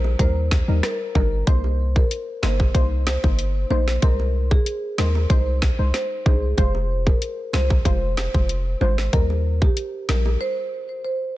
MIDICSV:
0, 0, Header, 1, 5, 480
1, 0, Start_track
1, 0, Tempo, 638298
1, 1106, Time_signature, 4, 2, 24, 8
1, 8551, End_track
2, 0, Start_track
2, 0, Title_t, "Marimba"
2, 0, Program_c, 0, 12
2, 147, Note_on_c, 0, 72, 107
2, 492, Note_off_c, 0, 72, 0
2, 627, Note_on_c, 0, 70, 86
2, 708, Note_off_c, 0, 70, 0
2, 868, Note_on_c, 0, 70, 81
2, 949, Note_off_c, 0, 70, 0
2, 1108, Note_on_c, 0, 72, 97
2, 1189, Note_off_c, 0, 72, 0
2, 1475, Note_on_c, 0, 70, 84
2, 1547, Note_off_c, 0, 70, 0
2, 1829, Note_on_c, 0, 72, 77
2, 1910, Note_off_c, 0, 72, 0
2, 2308, Note_on_c, 0, 72, 74
2, 2389, Note_off_c, 0, 72, 0
2, 2787, Note_on_c, 0, 72, 85
2, 2869, Note_off_c, 0, 72, 0
2, 3025, Note_on_c, 0, 70, 99
2, 3107, Note_off_c, 0, 70, 0
2, 3393, Note_on_c, 0, 68, 83
2, 3466, Note_off_c, 0, 68, 0
2, 3748, Note_on_c, 0, 70, 80
2, 3829, Note_off_c, 0, 70, 0
2, 3986, Note_on_c, 0, 72, 104
2, 4331, Note_off_c, 0, 72, 0
2, 4467, Note_on_c, 0, 72, 84
2, 4548, Note_off_c, 0, 72, 0
2, 4707, Note_on_c, 0, 68, 82
2, 4788, Note_off_c, 0, 68, 0
2, 4946, Note_on_c, 0, 72, 102
2, 5028, Note_off_c, 0, 72, 0
2, 5315, Note_on_c, 0, 70, 84
2, 5387, Note_off_c, 0, 70, 0
2, 5667, Note_on_c, 0, 72, 81
2, 5748, Note_off_c, 0, 72, 0
2, 6147, Note_on_c, 0, 72, 81
2, 6229, Note_off_c, 0, 72, 0
2, 6628, Note_on_c, 0, 72, 86
2, 6709, Note_off_c, 0, 72, 0
2, 6867, Note_on_c, 0, 70, 95
2, 6948, Note_off_c, 0, 70, 0
2, 7233, Note_on_c, 0, 67, 78
2, 7306, Note_off_c, 0, 67, 0
2, 7587, Note_on_c, 0, 70, 79
2, 7668, Note_off_c, 0, 70, 0
2, 7826, Note_on_c, 0, 72, 103
2, 8171, Note_off_c, 0, 72, 0
2, 8305, Note_on_c, 0, 72, 85
2, 8387, Note_off_c, 0, 72, 0
2, 8551, End_track
3, 0, Start_track
3, 0, Title_t, "Synth stab"
3, 0, Program_c, 1, 62
3, 144, Note_on_c, 1, 55, 88
3, 147, Note_on_c, 1, 63, 82
3, 149, Note_on_c, 1, 70, 105
3, 482, Note_off_c, 1, 55, 0
3, 483, Note_off_c, 1, 63, 0
3, 484, Note_off_c, 1, 70, 0
3, 511, Note_on_c, 1, 55, 77
3, 514, Note_on_c, 1, 63, 70
3, 517, Note_on_c, 1, 70, 89
3, 838, Note_off_c, 1, 55, 0
3, 839, Note_off_c, 1, 63, 0
3, 841, Note_off_c, 1, 70, 0
3, 863, Note_on_c, 1, 55, 79
3, 866, Note_on_c, 1, 63, 74
3, 867, Note_on_c, 1, 70, 89
3, 1086, Note_off_c, 1, 55, 0
3, 1088, Note_off_c, 1, 63, 0
3, 1088, Note_off_c, 1, 70, 0
3, 1103, Note_on_c, 1, 58, 99
3, 1105, Note_on_c, 1, 63, 92
3, 1109, Note_on_c, 1, 72, 111
3, 1549, Note_off_c, 1, 58, 0
3, 1549, Note_off_c, 1, 63, 0
3, 1551, Note_off_c, 1, 72, 0
3, 1822, Note_on_c, 1, 58, 80
3, 1825, Note_on_c, 1, 63, 74
3, 1827, Note_on_c, 1, 72, 87
3, 1934, Note_off_c, 1, 58, 0
3, 1936, Note_off_c, 1, 63, 0
3, 1936, Note_off_c, 1, 72, 0
3, 2063, Note_on_c, 1, 58, 93
3, 2066, Note_on_c, 1, 63, 85
3, 2068, Note_on_c, 1, 72, 104
3, 2401, Note_off_c, 1, 58, 0
3, 2402, Note_off_c, 1, 63, 0
3, 2403, Note_off_c, 1, 72, 0
3, 2431, Note_on_c, 1, 58, 75
3, 2433, Note_on_c, 1, 63, 74
3, 2435, Note_on_c, 1, 72, 87
3, 2758, Note_off_c, 1, 58, 0
3, 2759, Note_off_c, 1, 63, 0
3, 2760, Note_off_c, 1, 72, 0
3, 2784, Note_on_c, 1, 58, 77
3, 2786, Note_on_c, 1, 63, 76
3, 2788, Note_on_c, 1, 72, 91
3, 3007, Note_off_c, 1, 58, 0
3, 3008, Note_off_c, 1, 63, 0
3, 3009, Note_off_c, 1, 72, 0
3, 3024, Note_on_c, 1, 56, 100
3, 3027, Note_on_c, 1, 63, 92
3, 3028, Note_on_c, 1, 72, 108
3, 3469, Note_off_c, 1, 56, 0
3, 3470, Note_off_c, 1, 63, 0
3, 3471, Note_off_c, 1, 72, 0
3, 3744, Note_on_c, 1, 56, 82
3, 3746, Note_on_c, 1, 63, 74
3, 3749, Note_on_c, 1, 72, 91
3, 3855, Note_off_c, 1, 56, 0
3, 3856, Note_off_c, 1, 63, 0
3, 3857, Note_off_c, 1, 72, 0
3, 3982, Note_on_c, 1, 56, 96
3, 3984, Note_on_c, 1, 63, 89
3, 3986, Note_on_c, 1, 72, 101
3, 4320, Note_off_c, 1, 56, 0
3, 4322, Note_off_c, 1, 63, 0
3, 4323, Note_off_c, 1, 72, 0
3, 4349, Note_on_c, 1, 56, 79
3, 4351, Note_on_c, 1, 63, 70
3, 4353, Note_on_c, 1, 72, 87
3, 4677, Note_off_c, 1, 56, 0
3, 4678, Note_off_c, 1, 63, 0
3, 4679, Note_off_c, 1, 72, 0
3, 4704, Note_on_c, 1, 56, 82
3, 4706, Note_on_c, 1, 63, 76
3, 4709, Note_on_c, 1, 72, 89
3, 4927, Note_off_c, 1, 56, 0
3, 4928, Note_off_c, 1, 63, 0
3, 4929, Note_off_c, 1, 72, 0
3, 4943, Note_on_c, 1, 56, 100
3, 4945, Note_on_c, 1, 65, 95
3, 4949, Note_on_c, 1, 72, 115
3, 5388, Note_off_c, 1, 56, 0
3, 5389, Note_off_c, 1, 65, 0
3, 5391, Note_off_c, 1, 72, 0
3, 5664, Note_on_c, 1, 56, 81
3, 5667, Note_on_c, 1, 65, 76
3, 5668, Note_on_c, 1, 72, 89
3, 5775, Note_off_c, 1, 56, 0
3, 5776, Note_off_c, 1, 65, 0
3, 5777, Note_off_c, 1, 72, 0
3, 5903, Note_on_c, 1, 56, 92
3, 5905, Note_on_c, 1, 65, 88
3, 5907, Note_on_c, 1, 72, 98
3, 6241, Note_off_c, 1, 56, 0
3, 6242, Note_off_c, 1, 65, 0
3, 6243, Note_off_c, 1, 72, 0
3, 6270, Note_on_c, 1, 56, 81
3, 6273, Note_on_c, 1, 65, 71
3, 6275, Note_on_c, 1, 72, 83
3, 6597, Note_off_c, 1, 56, 0
3, 6599, Note_off_c, 1, 65, 0
3, 6600, Note_off_c, 1, 72, 0
3, 6622, Note_on_c, 1, 56, 84
3, 6624, Note_on_c, 1, 65, 75
3, 6627, Note_on_c, 1, 72, 93
3, 6846, Note_off_c, 1, 56, 0
3, 6847, Note_off_c, 1, 65, 0
3, 6848, Note_off_c, 1, 72, 0
3, 6862, Note_on_c, 1, 55, 98
3, 6865, Note_on_c, 1, 63, 91
3, 6867, Note_on_c, 1, 70, 108
3, 7308, Note_off_c, 1, 55, 0
3, 7309, Note_off_c, 1, 63, 0
3, 7310, Note_off_c, 1, 70, 0
3, 7583, Note_on_c, 1, 55, 81
3, 7585, Note_on_c, 1, 63, 72
3, 7587, Note_on_c, 1, 70, 90
3, 7695, Note_off_c, 1, 55, 0
3, 7695, Note_off_c, 1, 63, 0
3, 7697, Note_off_c, 1, 70, 0
3, 8551, End_track
4, 0, Start_track
4, 0, Title_t, "808-style bass"
4, 0, Program_c, 2, 38
4, 0, Note_on_c, 2, 34, 104
4, 118, Note_off_c, 2, 34, 0
4, 145, Note_on_c, 2, 39, 106
4, 470, Note_off_c, 2, 39, 0
4, 513, Note_on_c, 2, 39, 93
4, 613, Note_off_c, 2, 39, 0
4, 867, Note_on_c, 2, 31, 100
4, 1079, Note_off_c, 2, 31, 0
4, 1107, Note_on_c, 2, 36, 119
4, 1531, Note_off_c, 2, 36, 0
4, 1826, Note_on_c, 2, 31, 91
4, 2038, Note_off_c, 2, 31, 0
4, 2064, Note_on_c, 2, 36, 105
4, 2390, Note_off_c, 2, 36, 0
4, 2435, Note_on_c, 2, 31, 99
4, 2746, Note_off_c, 2, 31, 0
4, 2785, Note_on_c, 2, 34, 94
4, 2998, Note_off_c, 2, 34, 0
4, 3027, Note_on_c, 2, 36, 110
4, 3451, Note_off_c, 2, 36, 0
4, 3747, Note_on_c, 2, 39, 94
4, 3959, Note_off_c, 2, 39, 0
4, 3985, Note_on_c, 2, 36, 109
4, 4310, Note_off_c, 2, 36, 0
4, 4355, Note_on_c, 2, 36, 85
4, 4454, Note_off_c, 2, 36, 0
4, 4707, Note_on_c, 2, 36, 91
4, 4919, Note_off_c, 2, 36, 0
4, 4947, Note_on_c, 2, 29, 113
4, 5371, Note_off_c, 2, 29, 0
4, 5665, Note_on_c, 2, 36, 92
4, 5878, Note_off_c, 2, 36, 0
4, 5905, Note_on_c, 2, 29, 112
4, 6230, Note_off_c, 2, 29, 0
4, 6275, Note_on_c, 2, 29, 94
4, 6586, Note_off_c, 2, 29, 0
4, 6625, Note_on_c, 2, 32, 97
4, 6837, Note_off_c, 2, 32, 0
4, 6866, Note_on_c, 2, 39, 116
4, 7290, Note_off_c, 2, 39, 0
4, 7586, Note_on_c, 2, 34, 103
4, 7798, Note_off_c, 2, 34, 0
4, 8551, End_track
5, 0, Start_track
5, 0, Title_t, "Drums"
5, 32, Note_on_c, 9, 60, 85
5, 107, Note_off_c, 9, 60, 0
5, 145, Note_on_c, 9, 36, 101
5, 146, Note_on_c, 9, 42, 77
5, 147, Note_on_c, 9, 60, 72
5, 220, Note_off_c, 9, 36, 0
5, 222, Note_off_c, 9, 42, 0
5, 222, Note_off_c, 9, 60, 0
5, 386, Note_on_c, 9, 38, 126
5, 387, Note_on_c, 9, 36, 101
5, 387, Note_on_c, 9, 60, 64
5, 462, Note_off_c, 9, 36, 0
5, 462, Note_off_c, 9, 38, 0
5, 462, Note_off_c, 9, 60, 0
5, 626, Note_on_c, 9, 37, 104
5, 626, Note_on_c, 9, 38, 73
5, 627, Note_on_c, 9, 42, 83
5, 701, Note_off_c, 9, 37, 0
5, 701, Note_off_c, 9, 38, 0
5, 702, Note_off_c, 9, 42, 0
5, 865, Note_on_c, 9, 61, 84
5, 867, Note_on_c, 9, 36, 100
5, 941, Note_off_c, 9, 61, 0
5, 942, Note_off_c, 9, 36, 0
5, 1106, Note_on_c, 9, 42, 61
5, 1106, Note_on_c, 9, 60, 70
5, 1107, Note_on_c, 9, 36, 110
5, 1181, Note_off_c, 9, 60, 0
5, 1182, Note_off_c, 9, 36, 0
5, 1182, Note_off_c, 9, 42, 0
5, 1234, Note_on_c, 9, 60, 55
5, 1309, Note_off_c, 9, 60, 0
5, 1473, Note_on_c, 9, 36, 97
5, 1474, Note_on_c, 9, 60, 72
5, 1548, Note_off_c, 9, 36, 0
5, 1549, Note_off_c, 9, 60, 0
5, 1587, Note_on_c, 9, 42, 80
5, 1662, Note_off_c, 9, 42, 0
5, 1825, Note_on_c, 9, 60, 59
5, 1825, Note_on_c, 9, 61, 83
5, 1827, Note_on_c, 9, 38, 115
5, 1900, Note_off_c, 9, 60, 0
5, 1900, Note_off_c, 9, 61, 0
5, 1903, Note_off_c, 9, 38, 0
5, 1952, Note_on_c, 9, 60, 81
5, 1953, Note_on_c, 9, 36, 91
5, 2027, Note_off_c, 9, 60, 0
5, 2029, Note_off_c, 9, 36, 0
5, 2064, Note_on_c, 9, 36, 99
5, 2066, Note_on_c, 9, 60, 74
5, 2067, Note_on_c, 9, 42, 72
5, 2140, Note_off_c, 9, 36, 0
5, 2141, Note_off_c, 9, 60, 0
5, 2142, Note_off_c, 9, 42, 0
5, 2306, Note_on_c, 9, 60, 61
5, 2307, Note_on_c, 9, 38, 127
5, 2382, Note_off_c, 9, 38, 0
5, 2382, Note_off_c, 9, 60, 0
5, 2435, Note_on_c, 9, 36, 99
5, 2510, Note_off_c, 9, 36, 0
5, 2546, Note_on_c, 9, 42, 82
5, 2622, Note_off_c, 9, 42, 0
5, 2786, Note_on_c, 9, 61, 82
5, 2861, Note_off_c, 9, 61, 0
5, 2915, Note_on_c, 9, 38, 72
5, 2990, Note_off_c, 9, 38, 0
5, 3025, Note_on_c, 9, 60, 70
5, 3026, Note_on_c, 9, 42, 67
5, 3027, Note_on_c, 9, 36, 115
5, 3101, Note_off_c, 9, 42, 0
5, 3101, Note_off_c, 9, 60, 0
5, 3102, Note_off_c, 9, 36, 0
5, 3155, Note_on_c, 9, 60, 57
5, 3230, Note_off_c, 9, 60, 0
5, 3393, Note_on_c, 9, 36, 94
5, 3394, Note_on_c, 9, 60, 72
5, 3468, Note_off_c, 9, 36, 0
5, 3470, Note_off_c, 9, 60, 0
5, 3507, Note_on_c, 9, 42, 80
5, 3582, Note_off_c, 9, 42, 0
5, 3746, Note_on_c, 9, 60, 59
5, 3746, Note_on_c, 9, 61, 82
5, 3748, Note_on_c, 9, 38, 108
5, 3821, Note_off_c, 9, 60, 0
5, 3821, Note_off_c, 9, 61, 0
5, 3823, Note_off_c, 9, 38, 0
5, 3873, Note_on_c, 9, 60, 83
5, 3949, Note_off_c, 9, 60, 0
5, 3985, Note_on_c, 9, 36, 101
5, 3986, Note_on_c, 9, 42, 77
5, 3988, Note_on_c, 9, 60, 73
5, 4060, Note_off_c, 9, 36, 0
5, 4061, Note_off_c, 9, 42, 0
5, 4063, Note_off_c, 9, 60, 0
5, 4226, Note_on_c, 9, 38, 127
5, 4227, Note_on_c, 9, 36, 109
5, 4227, Note_on_c, 9, 60, 64
5, 4302, Note_off_c, 9, 38, 0
5, 4302, Note_off_c, 9, 60, 0
5, 4303, Note_off_c, 9, 36, 0
5, 4466, Note_on_c, 9, 38, 75
5, 4467, Note_on_c, 9, 42, 83
5, 4542, Note_off_c, 9, 38, 0
5, 4542, Note_off_c, 9, 42, 0
5, 4706, Note_on_c, 9, 61, 81
5, 4707, Note_on_c, 9, 36, 101
5, 4781, Note_off_c, 9, 61, 0
5, 4782, Note_off_c, 9, 36, 0
5, 4944, Note_on_c, 9, 60, 70
5, 4947, Note_on_c, 9, 36, 112
5, 4947, Note_on_c, 9, 42, 67
5, 5020, Note_off_c, 9, 60, 0
5, 5023, Note_off_c, 9, 36, 0
5, 5023, Note_off_c, 9, 42, 0
5, 5073, Note_on_c, 9, 60, 57
5, 5149, Note_off_c, 9, 60, 0
5, 5313, Note_on_c, 9, 60, 77
5, 5314, Note_on_c, 9, 36, 97
5, 5389, Note_off_c, 9, 36, 0
5, 5389, Note_off_c, 9, 60, 0
5, 5428, Note_on_c, 9, 42, 83
5, 5503, Note_off_c, 9, 42, 0
5, 5665, Note_on_c, 9, 60, 59
5, 5665, Note_on_c, 9, 61, 86
5, 5669, Note_on_c, 9, 38, 111
5, 5740, Note_off_c, 9, 60, 0
5, 5740, Note_off_c, 9, 61, 0
5, 5744, Note_off_c, 9, 38, 0
5, 5791, Note_on_c, 9, 60, 85
5, 5794, Note_on_c, 9, 36, 93
5, 5866, Note_off_c, 9, 60, 0
5, 5869, Note_off_c, 9, 36, 0
5, 5905, Note_on_c, 9, 36, 101
5, 5907, Note_on_c, 9, 60, 76
5, 5908, Note_on_c, 9, 42, 78
5, 5980, Note_off_c, 9, 36, 0
5, 5982, Note_off_c, 9, 60, 0
5, 5983, Note_off_c, 9, 42, 0
5, 6145, Note_on_c, 9, 60, 63
5, 6147, Note_on_c, 9, 38, 127
5, 6221, Note_off_c, 9, 60, 0
5, 6222, Note_off_c, 9, 38, 0
5, 6275, Note_on_c, 9, 36, 102
5, 6350, Note_off_c, 9, 36, 0
5, 6387, Note_on_c, 9, 42, 84
5, 6462, Note_off_c, 9, 42, 0
5, 6625, Note_on_c, 9, 61, 85
5, 6700, Note_off_c, 9, 61, 0
5, 6755, Note_on_c, 9, 38, 71
5, 6830, Note_off_c, 9, 38, 0
5, 6865, Note_on_c, 9, 60, 74
5, 6866, Note_on_c, 9, 36, 113
5, 6866, Note_on_c, 9, 42, 66
5, 6940, Note_off_c, 9, 60, 0
5, 6941, Note_off_c, 9, 42, 0
5, 6942, Note_off_c, 9, 36, 0
5, 6993, Note_on_c, 9, 60, 57
5, 7068, Note_off_c, 9, 60, 0
5, 7232, Note_on_c, 9, 36, 94
5, 7234, Note_on_c, 9, 60, 70
5, 7308, Note_off_c, 9, 36, 0
5, 7309, Note_off_c, 9, 60, 0
5, 7345, Note_on_c, 9, 42, 81
5, 7420, Note_off_c, 9, 42, 0
5, 7585, Note_on_c, 9, 60, 57
5, 7585, Note_on_c, 9, 61, 82
5, 7586, Note_on_c, 9, 38, 107
5, 7660, Note_off_c, 9, 60, 0
5, 7660, Note_off_c, 9, 61, 0
5, 7661, Note_off_c, 9, 38, 0
5, 7711, Note_on_c, 9, 60, 87
5, 7787, Note_off_c, 9, 60, 0
5, 8551, End_track
0, 0, End_of_file